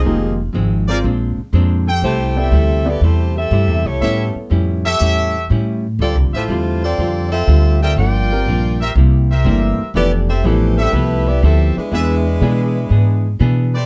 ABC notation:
X:1
M:4/4
L:1/8
Q:"Swing" 1/4=121
K:Am
V:1 name="Trumpet section"
z3 [_A_Bcd] z3 [G=Acg]- | [GAcg]2 z6 | [GA^ce] z2 [GAce]3 z2 | z [FGce] z4 z [G_Bdg] |
z3 [G_Bce] z [GBce]3 | z3 [GABe]3 z2 | [^GBde] z6 [A,=GBcd] |]
V:2 name="Saxophone section"
[F,C^D^G] z6 z | [A,EGc] [CGAe]2 [B,EGd] [A,EGc] [CGAe]2 [A,EG^c]- | [A,EG^c] z6 z | [CFAd] [A,EFc]2 [CFAd]2 [CFAe]2 [CFAe] |
[F_Bdg]4 z4 | [B,EGd] [CGAe] [E,A,CG] [G,CEA] [A,EGB] [B,EGd] [CGAe] [^G,DEB]- | [^G,DEB]6 z2 |]
V:3 name="Grand piano"
[F,_B,_EG] z2 [CF_Bc] z4 | z [B,EAd] z [B,EAd] z4 | [B,EA^c]4- [B,EAc] z3 | z8 |
z [G,CF_B] z4 [E,A,DG] z | [E,A,DG] z [E,A,DE] z4 z | [^G,B,DE] z [G,B,DE] z4 z |]
V:4 name="Hollow-body jazz guitar"
[F,,_E,_A,C] z [F,,E,A,C] z [_B,,A,CD] z [B,,A,CD] z | [C,G,A,E] z [C,G,A,E] z [C,G,A,E] z [C,G,A,E] z | [A,,G,^CE] z [A,,G,CE] z [A,,G,CE] z [A,,G,CE] z | [D,G,CF] z [D,G,CF] z [D,G,CF] z [D,G,CF] z |
[G,,F,_B,D] z [G,,F,B,D] z [C,G,B,E] z [C,G,B,E] z | [F,B,EA] z [F,B,EA] z [F,B,EA] z [F,B,EA] z | [E,B,D^G] z [E,B,DG] z [E,B,DG] z [E,B,DG] z |]
V:5 name="Upright bass" clef=bass
F,,,2 _A,,,2 _B,,, z F,,2 | C,,2 D,,2 E,,2 (3G,, E,, C,, | A,, z F,,2 E,,2 A,,2 | (3D,, C,, A,,, E,,2 F,,2 D,,2 |
G,,,2 _B,,,2 C,,2 G,,, z | F,,,2 A,,,2 C,,2 D,, z | E,,2 B,,2 ^G,,2 B,,2 |]